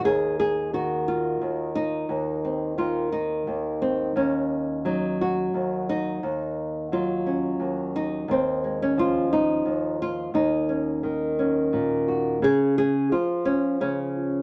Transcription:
Already playing: D#3
0.04 D#2 G#4
0.40 G#4
0.73 D#3 F#4
1.08 F4
1.41 D#2
1.75 D#4
2.09 D#2
2.45 C4
2.78 D#3 F4
3.12 D#4
3.47 D#2
3.82 C4
4.16 D#2 C#4
4.85 F#3 D#4
5.21 F#4
5.54 D#2
5.89 D#4
6.23 D#2
6.92 F#3 F4
7.26 C#4
7.60 D#2
7.96 D#4
8.28 D#2 C4
8.64 G#3
8.82 C#4
8.97 F3 F4
9.33 D#4
9.66 D#2
10.02 F4
10.34 D#2 D#4
10.69 C#4
11.03 D#3
11.39 C#4
11.73 A#2
12.08 F#4
12.42 C#3 G#4
12.78 G#4
13.12 F3 F4
13.45 C#4
13.80 C#3 C#4

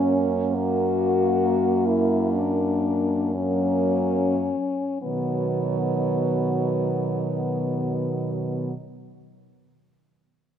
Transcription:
Already playing: F#2 A#3 C#4
0.54 A#3 F#4
1.87 E4
2.34 D4
3.34 F#3 A#3 C#4
5.02 B2 D#3 F#3 B3

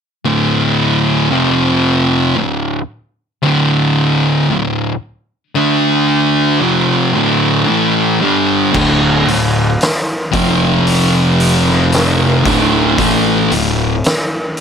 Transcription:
0.25 D2 A2 D3
1.31 F2 C3 F3
2.36 D2 A2
3.42 D2 A2 D3
4.49 D2 A2
5.55 D3 A3 D4
6.60 F2 C3 F3
7.14 D2 A2 D3
7.66 A2 E3 A3
8.20 G2 D3 G3
8.72 D1 D2 A2 D3, kick, crash
8.77 A2
9.26 D1 D2 A2, open hi-hat
9.81 snare, open hi-hat
10.31 F1 F2 C3 F3, kick, open hi-hat
10.87 open hi-hat
11.40 open hi-hat
11.69 snare
11.92 snare, open hi-hat
12.44 D1 D2 A2 D3, kick, open hi-hat
12.98 A1 A2 E3 A3, kick, open hi-hat
13.51 D1 D2 A2, open hi-hat
14.04 snare, open hi-hat
14.57 open hi-hat

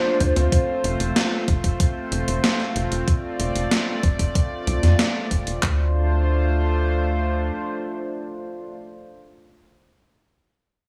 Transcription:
Already playing: A3 D4 F4 C5
0.20 D2, kick, closed hi-hat
0.36 D2 C4 F4 C5, closed hi-hat
0.52 C4, kick, closed hi-hat
0.84 F1, closed hi-hat
1.00 F1, closed hi-hat
1.16 snare, closed hi-hat
1.48 F1, kick, closed hi-hat
1.64 F1, kick, closed hi-hat
1.80 kick, closed hi-hat
2.12 F1, closed hi-hat
2.28 F1, closed hi-hat
2.44 snare, closed hi-hat
2.60 snare
2.76 F1, closed hi-hat
2.92 F1, closed hi-hat
3.07 D5, kick, closed hi-hat
3.40 F1, closed hi-hat
3.56 F1, closed hi-hat
3.71 snare, closed hi-hat
4.03 F1, kick, closed hi-hat
4.19 F1, kick, closed hi-hat
4.35 kick, closed hi-hat
4.67 C2, closed hi-hat
4.83 F2, snare, closed hi-hat
4.99 snare, closed hi-hat
5.31 F1, kick, closed hi-hat
5.47 F1, closed hi-hat
5.63 D2 A3 D4 F4 C5, kick, clap

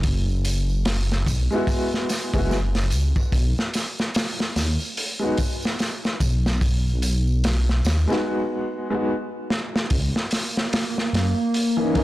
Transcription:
Already playing: F#1
0.03 kick, open hi-hat, tambourine
0.28 tambourine
0.45 open hi-hat, tambourine
0.70 tambourine
0.85 snare, open hi-hat, tambourine
1.11 snare, tambourine
1.26 B1, kick, open hi-hat, tambourine
1.51 G#3 B3 E4, tambourine
1.55 F#4
1.67 kick, open hi-hat, tambourine
1.93 snare, tambourine
2.09 snare, open hi-hat, tambourine
2.34 F#1 G#3 B3 E4, kick, open hi-hat, tambourine
2.38 F#4
2.51 snare, tambourine
2.75 snare, open hi-hat, tambourine
2.90 C#2, open hi-hat, tambourine
3.16 kick, tambourine
3.32 B1, kick, open hi-hat, tambourine
3.58 snare, tambourine
3.74 snare, open hi-hat, tambourine
3.99 snare, tambourine
4.14 snare, open hi-hat, tambourine
4.39 snare, tambourine
4.56 D#2, snare, open hi-hat, tambourine
4.80 tambourine
4.97 open hi-hat, tambourine
5.19 G#3 B3 D#4 F#4, tambourine
5.37 kick, open hi-hat, tambourine
5.63 snare, tambourine
5.79 snare, open hi-hat, tambourine
6.04 snare, tambourine
6.20 B1, kick, open hi-hat, tambourine
6.46 snare, tambourine
6.61 kick, open hi-hat, tambourine
6.87 tambourine
7.02 open hi-hat, tambourine
7.28 tambourine
7.44 snare, open hi-hat, tambourine
7.69 snare, tambourine
7.84 D#2, snare, open hi-hat, tambourine
8.07 G#3 B3 D#4, snare, tambourine
8.12 F#4
8.90 G#3 B3 D#4 F#4
9.50 snare
9.76 snare
9.90 C#2 A#3, kick, open hi-hat
10.16 snare
10.31 snare, open hi-hat
10.57 snare
10.73 snare, open hi-hat
10.98 snare
11.13 F#2, snare, open hi-hat
11.54 open hi-hat
11.77 E3 A#3 C#4
11.81 D#4
11.94 E3 A#3 C#4 D#4, kick, open hi-hat

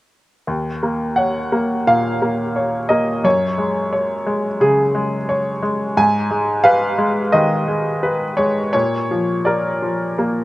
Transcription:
0.47 D#2
0.83 A#3
1.16 C#5 F#5
1.52 A#3
1.87 A#2 F5
2.22 A#3
2.56 C#5
2.89 A#3 D#5
3.24 F#2 C#5
3.58 G#3
3.93 C#5
4.27 G#3
4.60 C#3 G#4
4.95 G#3
5.29 C#5
5.63 G#3
5.97 G#2 G#5
6.31 G#3
6.64 B4 F5
6.98 G#3
7.32 D#3 D#5
7.68 G#3
8.03 B4
8.37 G#3 C#5
8.73 A#2 C#5
9.11 F3
9.45 A#4 D5
9.82 F3
10.19 A#3

